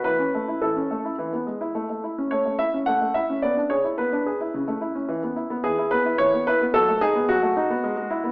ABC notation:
X:1
M:3/4
L:1/16
Q:1/4=109
K:A
V:1 name="Grand piano"
B4 A4 z4 | z4 c2 e2 f2 e2 | d2 c2 B8 | z4 G2 B2 c2 B2 |
A2 G2 F8 |]
V:2 name="Grand piano"
E, C A, E E, C A, E E, B, G, E | A, A, E C A, A, E C A, A, E C | B, D G E B, D G E C, A, E C | E, B, E B, E, E B, E E, B, E B, |
F, A, ^D B, F, A, D B, G, G, E B, |]